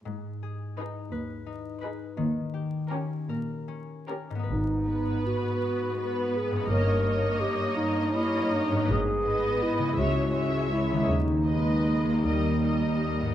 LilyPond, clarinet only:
\new Staff \with { instrumentName = "Clarinet" } { \time 6/8 \key gis \minor \tempo 4. = 54 r2. | r2. | dis'4 fis'4. gis'8 | ais'4 g'8 dis'8 e'8 dis'8 |
gis'4 e'8 fis'4 e'8 | dis'2~ dis'8 r8 | }